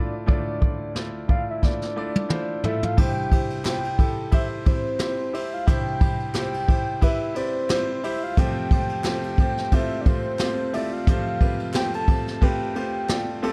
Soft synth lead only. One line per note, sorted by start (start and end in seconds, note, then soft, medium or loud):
0.00 0.15 D5 loud
0.31 0.93 D5 medium
1.30 1.48 F5 loud
1.50 1.66 E5 medium
1.65 2.65 D5 medium
2.66 2.83 E5 medium
2.84 2.98 F5 medium
2.99 3.62 G5 loud
3.67 4.30 G5 medium
4.34 4.48 E5 loud
4.67 5.36 C5 medium
5.34 5.55 E5 medium
5.54 5.69 F5 medium
5.67 6.35 G5 loud
6.36 7.05 G5 loud
7.03 7.38 E5 loud
7.36 8.06 C5 medium
8.04 8.23 E5 medium
8.24 8.40 F5 loud
8.39 9.06 G5 loud
9.07 9.76 G5 loud
9.74 10.03 E5 loud
10.01 10.09 D5 medium
10.07 10.75 C5 loud
10.74 10.94 E5 medium
10.93 11.75 F5 loud
11.76 11.93 G5 loud
11.95 12.45 A5 loud
12.43 13.44 G5 loud